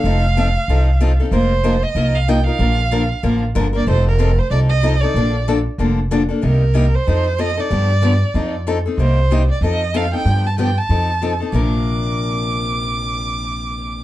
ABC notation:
X:1
M:4/4
L:1/8
Q:"Swing" 1/4=188
K:Bb
V:1 name="Violin"
f6- f z | c3 e2 f g f- | f4- f z2 d | c B2 c d e2 d- |
d2 z6 | B3 c3 e d- | d4- d z3 | c3 d e2 f g- |
g a g a4 z | d'8- | d'8 |]
V:2 name="Steel-string acoustic guitar"
[F,CEA] z [F,CEA] z [F,CEA] z [F,CEA] [CEA] | [F,B,EFB] z [F,B,EFB] z [F,B,EFB] z [F,B,EFB] [EFB] | [D,F,B,DB] z [D,F,B,DB] z [D,F,B,DB] z [D,F,B,DB] [B,DB] | [F,CEA] z [F,CEA] z [F,CEA] z [F,CEA] [CEA] |
[D,F,B,DA] z [D,F,B,DA] z [D,F,B,DA] z [D,F,B,DA] [B,DA] | [C,G,B,EG] z [C,G,B,EG] z [F,CEA] z [F,CEA] [CEA] | [D,F,=B,DG] z [D,F,B,DG] z [F,CEA] z [F,CEA] [CEA] | [C,G,B,EG] z [C,G,B,EG] z [F,CEA] z [F,CEA] [CEA] |
[D,F,=B,DG] z [D,F,B,DG] z [F,CEA] z [F,CEA] [CEA] | [B,,C,F,B,DB]8- | [B,,C,F,B,DB]8 |]
V:3 name="Upright bass" clef=bass
F,,,4 C,,4 | F,,,4 C,,4 | B,,,4 A,,,2 G,,,2 | F,,,4 C,,4 |
B,,,4 F,,,4 | C,,4 F,,4 | G,,4 F,,4 | C,,4 F,,4 |
G,,4 F,,4 | B,,,8- | B,,,8 |]